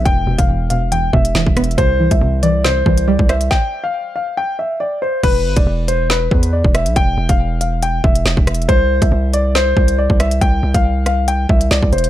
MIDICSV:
0, 0, Header, 1, 5, 480
1, 0, Start_track
1, 0, Tempo, 431655
1, 61, Time_signature, 4, 2, 24, 8
1, 13451, End_track
2, 0, Start_track
2, 0, Title_t, "Grand piano"
2, 0, Program_c, 0, 0
2, 60, Note_on_c, 0, 79, 102
2, 406, Note_off_c, 0, 79, 0
2, 426, Note_on_c, 0, 77, 79
2, 759, Note_off_c, 0, 77, 0
2, 779, Note_on_c, 0, 77, 73
2, 975, Note_off_c, 0, 77, 0
2, 1021, Note_on_c, 0, 79, 91
2, 1217, Note_off_c, 0, 79, 0
2, 1258, Note_on_c, 0, 76, 85
2, 1936, Note_off_c, 0, 76, 0
2, 1977, Note_on_c, 0, 72, 107
2, 2324, Note_off_c, 0, 72, 0
2, 2349, Note_on_c, 0, 76, 70
2, 2680, Note_off_c, 0, 76, 0
2, 2699, Note_on_c, 0, 74, 93
2, 2896, Note_off_c, 0, 74, 0
2, 2940, Note_on_c, 0, 72, 96
2, 3392, Note_off_c, 0, 72, 0
2, 3422, Note_on_c, 0, 74, 82
2, 3617, Note_off_c, 0, 74, 0
2, 3663, Note_on_c, 0, 76, 80
2, 3858, Note_off_c, 0, 76, 0
2, 3899, Note_on_c, 0, 79, 96
2, 4245, Note_off_c, 0, 79, 0
2, 4265, Note_on_c, 0, 77, 82
2, 4598, Note_off_c, 0, 77, 0
2, 4621, Note_on_c, 0, 77, 72
2, 4817, Note_off_c, 0, 77, 0
2, 4864, Note_on_c, 0, 79, 87
2, 5058, Note_off_c, 0, 79, 0
2, 5104, Note_on_c, 0, 76, 76
2, 5298, Note_off_c, 0, 76, 0
2, 5339, Note_on_c, 0, 74, 77
2, 5536, Note_off_c, 0, 74, 0
2, 5582, Note_on_c, 0, 72, 78
2, 5777, Note_off_c, 0, 72, 0
2, 5822, Note_on_c, 0, 71, 115
2, 6167, Note_off_c, 0, 71, 0
2, 6188, Note_on_c, 0, 74, 77
2, 6520, Note_off_c, 0, 74, 0
2, 6540, Note_on_c, 0, 72, 89
2, 6736, Note_off_c, 0, 72, 0
2, 6782, Note_on_c, 0, 71, 85
2, 7233, Note_off_c, 0, 71, 0
2, 7260, Note_on_c, 0, 74, 72
2, 7456, Note_off_c, 0, 74, 0
2, 7504, Note_on_c, 0, 76, 80
2, 7698, Note_off_c, 0, 76, 0
2, 7743, Note_on_c, 0, 79, 110
2, 8087, Note_off_c, 0, 79, 0
2, 8110, Note_on_c, 0, 77, 83
2, 8441, Note_off_c, 0, 77, 0
2, 8461, Note_on_c, 0, 77, 75
2, 8656, Note_off_c, 0, 77, 0
2, 8703, Note_on_c, 0, 79, 92
2, 8898, Note_off_c, 0, 79, 0
2, 8940, Note_on_c, 0, 76, 85
2, 9617, Note_off_c, 0, 76, 0
2, 9658, Note_on_c, 0, 72, 112
2, 10005, Note_off_c, 0, 72, 0
2, 10031, Note_on_c, 0, 76, 72
2, 10361, Note_off_c, 0, 76, 0
2, 10381, Note_on_c, 0, 74, 94
2, 10577, Note_off_c, 0, 74, 0
2, 10621, Note_on_c, 0, 72, 102
2, 11072, Note_off_c, 0, 72, 0
2, 11103, Note_on_c, 0, 74, 85
2, 11298, Note_off_c, 0, 74, 0
2, 11341, Note_on_c, 0, 76, 85
2, 11537, Note_off_c, 0, 76, 0
2, 11580, Note_on_c, 0, 79, 100
2, 11926, Note_off_c, 0, 79, 0
2, 11946, Note_on_c, 0, 77, 83
2, 12279, Note_off_c, 0, 77, 0
2, 12301, Note_on_c, 0, 77, 78
2, 12497, Note_off_c, 0, 77, 0
2, 12542, Note_on_c, 0, 79, 93
2, 12737, Note_off_c, 0, 79, 0
2, 12784, Note_on_c, 0, 76, 79
2, 12979, Note_off_c, 0, 76, 0
2, 13019, Note_on_c, 0, 74, 80
2, 13216, Note_off_c, 0, 74, 0
2, 13262, Note_on_c, 0, 72, 81
2, 13451, Note_off_c, 0, 72, 0
2, 13451, End_track
3, 0, Start_track
3, 0, Title_t, "Synth pluck"
3, 0, Program_c, 1, 84
3, 0, Note_on_c, 1, 47, 76
3, 0, Note_on_c, 1, 52, 94
3, 0, Note_on_c, 1, 59, 85
3, 60, Note_on_c, 1, 40, 85
3, 287, Note_off_c, 1, 47, 0
3, 300, Note_on_c, 1, 47, 71
3, 525, Note_off_c, 1, 40, 0
3, 538, Note_on_c, 1, 40, 70
3, 767, Note_off_c, 1, 47, 0
3, 780, Note_on_c, 1, 47, 98
3, 781, Note_off_c, 1, 52, 0
3, 1007, Note_off_c, 1, 40, 0
3, 1021, Note_off_c, 1, 59, 0
3, 1021, Note_on_c, 1, 40, 68
3, 1246, Note_off_c, 1, 47, 0
3, 1259, Note_on_c, 1, 47, 77
3, 1500, Note_on_c, 1, 52, 94
3, 1742, Note_on_c, 1, 59, 77
3, 1980, Note_off_c, 1, 47, 0
3, 1980, Note_off_c, 1, 52, 0
3, 1980, Note_on_c, 1, 48, 92
3, 1981, Note_off_c, 1, 40, 0
3, 1981, Note_off_c, 1, 59, 0
3, 2223, Note_on_c, 1, 52, 72
3, 2448, Note_off_c, 1, 48, 0
3, 2462, Note_on_c, 1, 48, 78
3, 2688, Note_off_c, 1, 52, 0
3, 2701, Note_on_c, 1, 52, 92
3, 2929, Note_off_c, 1, 48, 0
3, 2942, Note_on_c, 1, 48, 75
3, 3167, Note_off_c, 1, 52, 0
3, 3180, Note_on_c, 1, 52, 78
3, 3421, Note_on_c, 1, 55, 103
3, 3662, Note_on_c, 1, 72, 89
3, 4141, Note_off_c, 1, 48, 0
3, 4381, Note_off_c, 1, 52, 0
3, 4621, Note_off_c, 1, 55, 0
3, 4861, Note_off_c, 1, 72, 0
3, 13451, End_track
4, 0, Start_track
4, 0, Title_t, "808-style bass"
4, 0, Program_c, 2, 38
4, 61, Note_on_c, 2, 28, 108
4, 291, Note_off_c, 2, 28, 0
4, 300, Note_on_c, 2, 28, 104
4, 423, Note_off_c, 2, 28, 0
4, 429, Note_on_c, 2, 28, 104
4, 1228, Note_off_c, 2, 28, 0
4, 1260, Note_on_c, 2, 28, 102
4, 1491, Note_off_c, 2, 28, 0
4, 1501, Note_on_c, 2, 28, 108
4, 1623, Note_off_c, 2, 28, 0
4, 1628, Note_on_c, 2, 28, 99
4, 1734, Note_off_c, 2, 28, 0
4, 1741, Note_on_c, 2, 28, 107
4, 1971, Note_off_c, 2, 28, 0
4, 1981, Note_on_c, 2, 36, 112
4, 2333, Note_off_c, 2, 36, 0
4, 2349, Note_on_c, 2, 36, 96
4, 2457, Note_off_c, 2, 36, 0
4, 2462, Note_on_c, 2, 36, 103
4, 3153, Note_off_c, 2, 36, 0
4, 3180, Note_on_c, 2, 36, 106
4, 3533, Note_off_c, 2, 36, 0
4, 3549, Note_on_c, 2, 36, 101
4, 3887, Note_off_c, 2, 36, 0
4, 5821, Note_on_c, 2, 28, 106
4, 6060, Note_on_c, 2, 31, 100
4, 6077, Note_off_c, 2, 28, 0
4, 6181, Note_off_c, 2, 31, 0
4, 6189, Note_on_c, 2, 28, 98
4, 6297, Note_off_c, 2, 28, 0
4, 6301, Note_on_c, 2, 28, 106
4, 6992, Note_off_c, 2, 28, 0
4, 7020, Note_on_c, 2, 40, 109
4, 7373, Note_off_c, 2, 40, 0
4, 7388, Note_on_c, 2, 28, 109
4, 7627, Note_on_c, 2, 35, 107
4, 7644, Note_off_c, 2, 28, 0
4, 7735, Note_off_c, 2, 35, 0
4, 7741, Note_on_c, 2, 28, 115
4, 7971, Note_off_c, 2, 28, 0
4, 7980, Note_on_c, 2, 28, 110
4, 8102, Note_off_c, 2, 28, 0
4, 8109, Note_on_c, 2, 28, 106
4, 8908, Note_off_c, 2, 28, 0
4, 8940, Note_on_c, 2, 28, 102
4, 9171, Note_off_c, 2, 28, 0
4, 9180, Note_on_c, 2, 28, 110
4, 9303, Note_off_c, 2, 28, 0
4, 9309, Note_on_c, 2, 28, 102
4, 9417, Note_off_c, 2, 28, 0
4, 9421, Note_on_c, 2, 28, 106
4, 9651, Note_off_c, 2, 28, 0
4, 9661, Note_on_c, 2, 36, 112
4, 10013, Note_off_c, 2, 36, 0
4, 10028, Note_on_c, 2, 36, 103
4, 10133, Note_off_c, 2, 36, 0
4, 10139, Note_on_c, 2, 36, 105
4, 10831, Note_off_c, 2, 36, 0
4, 10860, Note_on_c, 2, 36, 102
4, 11213, Note_off_c, 2, 36, 0
4, 11229, Note_on_c, 2, 36, 102
4, 11567, Note_off_c, 2, 36, 0
4, 11581, Note_on_c, 2, 36, 113
4, 11811, Note_off_c, 2, 36, 0
4, 11821, Note_on_c, 2, 36, 107
4, 11943, Note_off_c, 2, 36, 0
4, 11948, Note_on_c, 2, 36, 103
4, 12748, Note_off_c, 2, 36, 0
4, 12781, Note_on_c, 2, 36, 105
4, 13011, Note_off_c, 2, 36, 0
4, 13023, Note_on_c, 2, 36, 107
4, 13144, Note_off_c, 2, 36, 0
4, 13149, Note_on_c, 2, 36, 102
4, 13257, Note_off_c, 2, 36, 0
4, 13262, Note_on_c, 2, 28, 111
4, 13451, Note_off_c, 2, 28, 0
4, 13451, End_track
5, 0, Start_track
5, 0, Title_t, "Drums"
5, 61, Note_on_c, 9, 36, 120
5, 61, Note_on_c, 9, 42, 69
5, 172, Note_off_c, 9, 36, 0
5, 172, Note_off_c, 9, 42, 0
5, 428, Note_on_c, 9, 42, 75
5, 429, Note_on_c, 9, 36, 96
5, 539, Note_off_c, 9, 42, 0
5, 540, Note_off_c, 9, 36, 0
5, 780, Note_on_c, 9, 42, 79
5, 891, Note_off_c, 9, 42, 0
5, 1021, Note_on_c, 9, 42, 87
5, 1133, Note_off_c, 9, 42, 0
5, 1260, Note_on_c, 9, 36, 100
5, 1372, Note_off_c, 9, 36, 0
5, 1388, Note_on_c, 9, 42, 75
5, 1499, Note_off_c, 9, 42, 0
5, 1501, Note_on_c, 9, 38, 112
5, 1612, Note_off_c, 9, 38, 0
5, 1629, Note_on_c, 9, 36, 97
5, 1740, Note_off_c, 9, 36, 0
5, 1741, Note_on_c, 9, 42, 74
5, 1742, Note_on_c, 9, 37, 101
5, 1820, Note_off_c, 9, 42, 0
5, 1820, Note_on_c, 9, 42, 56
5, 1853, Note_off_c, 9, 37, 0
5, 1901, Note_off_c, 9, 42, 0
5, 1901, Note_on_c, 9, 42, 42
5, 1980, Note_off_c, 9, 42, 0
5, 1980, Note_on_c, 9, 42, 68
5, 1981, Note_on_c, 9, 36, 116
5, 2091, Note_off_c, 9, 42, 0
5, 2092, Note_off_c, 9, 36, 0
5, 2348, Note_on_c, 9, 42, 75
5, 2349, Note_on_c, 9, 36, 98
5, 2459, Note_off_c, 9, 42, 0
5, 2460, Note_off_c, 9, 36, 0
5, 2700, Note_on_c, 9, 42, 78
5, 2812, Note_off_c, 9, 42, 0
5, 2941, Note_on_c, 9, 38, 106
5, 3053, Note_off_c, 9, 38, 0
5, 3180, Note_on_c, 9, 36, 100
5, 3292, Note_off_c, 9, 36, 0
5, 3308, Note_on_c, 9, 42, 75
5, 3419, Note_off_c, 9, 42, 0
5, 3549, Note_on_c, 9, 36, 97
5, 3660, Note_off_c, 9, 36, 0
5, 3661, Note_on_c, 9, 42, 70
5, 3662, Note_on_c, 9, 37, 98
5, 3772, Note_off_c, 9, 42, 0
5, 3773, Note_off_c, 9, 37, 0
5, 3789, Note_on_c, 9, 42, 73
5, 3900, Note_off_c, 9, 42, 0
5, 3901, Note_on_c, 9, 36, 113
5, 3901, Note_on_c, 9, 38, 92
5, 4012, Note_off_c, 9, 36, 0
5, 4012, Note_off_c, 9, 38, 0
5, 5821, Note_on_c, 9, 36, 118
5, 5821, Note_on_c, 9, 42, 72
5, 5821, Note_on_c, 9, 49, 106
5, 5932, Note_off_c, 9, 36, 0
5, 5932, Note_off_c, 9, 42, 0
5, 5932, Note_off_c, 9, 49, 0
5, 6188, Note_on_c, 9, 42, 76
5, 6189, Note_on_c, 9, 36, 105
5, 6299, Note_off_c, 9, 42, 0
5, 6300, Note_off_c, 9, 36, 0
5, 6541, Note_on_c, 9, 42, 83
5, 6652, Note_off_c, 9, 42, 0
5, 6781, Note_on_c, 9, 38, 107
5, 6893, Note_off_c, 9, 38, 0
5, 7020, Note_on_c, 9, 36, 103
5, 7132, Note_off_c, 9, 36, 0
5, 7149, Note_on_c, 9, 42, 79
5, 7260, Note_off_c, 9, 42, 0
5, 7389, Note_on_c, 9, 36, 99
5, 7500, Note_off_c, 9, 36, 0
5, 7501, Note_on_c, 9, 42, 74
5, 7502, Note_on_c, 9, 37, 102
5, 7612, Note_off_c, 9, 42, 0
5, 7613, Note_off_c, 9, 37, 0
5, 7628, Note_on_c, 9, 42, 76
5, 7739, Note_off_c, 9, 42, 0
5, 7741, Note_on_c, 9, 36, 117
5, 7741, Note_on_c, 9, 42, 72
5, 7852, Note_off_c, 9, 36, 0
5, 7852, Note_off_c, 9, 42, 0
5, 8108, Note_on_c, 9, 36, 104
5, 8108, Note_on_c, 9, 42, 76
5, 8219, Note_off_c, 9, 42, 0
5, 8220, Note_off_c, 9, 36, 0
5, 8461, Note_on_c, 9, 42, 83
5, 8572, Note_off_c, 9, 42, 0
5, 8701, Note_on_c, 9, 42, 88
5, 8812, Note_off_c, 9, 42, 0
5, 8940, Note_on_c, 9, 36, 102
5, 9052, Note_off_c, 9, 36, 0
5, 9068, Note_on_c, 9, 42, 76
5, 9179, Note_off_c, 9, 42, 0
5, 9181, Note_on_c, 9, 38, 114
5, 9292, Note_off_c, 9, 38, 0
5, 9309, Note_on_c, 9, 36, 102
5, 9420, Note_off_c, 9, 36, 0
5, 9421, Note_on_c, 9, 42, 75
5, 9422, Note_on_c, 9, 37, 101
5, 9501, Note_off_c, 9, 42, 0
5, 9501, Note_on_c, 9, 42, 61
5, 9533, Note_off_c, 9, 37, 0
5, 9582, Note_off_c, 9, 42, 0
5, 9582, Note_on_c, 9, 42, 45
5, 9661, Note_off_c, 9, 42, 0
5, 9661, Note_on_c, 9, 36, 125
5, 9661, Note_on_c, 9, 42, 72
5, 9772, Note_off_c, 9, 36, 0
5, 9772, Note_off_c, 9, 42, 0
5, 10028, Note_on_c, 9, 36, 105
5, 10028, Note_on_c, 9, 42, 78
5, 10139, Note_off_c, 9, 36, 0
5, 10139, Note_off_c, 9, 42, 0
5, 10380, Note_on_c, 9, 42, 82
5, 10491, Note_off_c, 9, 42, 0
5, 10621, Note_on_c, 9, 38, 106
5, 10732, Note_off_c, 9, 38, 0
5, 10860, Note_on_c, 9, 36, 102
5, 10971, Note_off_c, 9, 36, 0
5, 10988, Note_on_c, 9, 42, 74
5, 11099, Note_off_c, 9, 42, 0
5, 11229, Note_on_c, 9, 36, 99
5, 11340, Note_off_c, 9, 36, 0
5, 11341, Note_on_c, 9, 42, 76
5, 11342, Note_on_c, 9, 37, 101
5, 11452, Note_off_c, 9, 42, 0
5, 11453, Note_off_c, 9, 37, 0
5, 11468, Note_on_c, 9, 42, 75
5, 11580, Note_off_c, 9, 42, 0
5, 11581, Note_on_c, 9, 36, 121
5, 11581, Note_on_c, 9, 42, 74
5, 11692, Note_off_c, 9, 36, 0
5, 11692, Note_off_c, 9, 42, 0
5, 11948, Note_on_c, 9, 42, 77
5, 11949, Note_on_c, 9, 36, 97
5, 12059, Note_off_c, 9, 42, 0
5, 12060, Note_off_c, 9, 36, 0
5, 12300, Note_on_c, 9, 37, 94
5, 12301, Note_on_c, 9, 42, 82
5, 12411, Note_off_c, 9, 37, 0
5, 12412, Note_off_c, 9, 42, 0
5, 12541, Note_on_c, 9, 42, 86
5, 12653, Note_off_c, 9, 42, 0
5, 12781, Note_on_c, 9, 36, 103
5, 12892, Note_off_c, 9, 36, 0
5, 12908, Note_on_c, 9, 42, 76
5, 13020, Note_off_c, 9, 42, 0
5, 13021, Note_on_c, 9, 38, 113
5, 13132, Note_off_c, 9, 38, 0
5, 13149, Note_on_c, 9, 36, 100
5, 13261, Note_off_c, 9, 36, 0
5, 13261, Note_on_c, 9, 42, 47
5, 13324, Note_off_c, 9, 42, 0
5, 13324, Note_on_c, 9, 42, 54
5, 13388, Note_off_c, 9, 42, 0
5, 13388, Note_on_c, 9, 42, 67
5, 13451, Note_off_c, 9, 42, 0
5, 13451, End_track
0, 0, End_of_file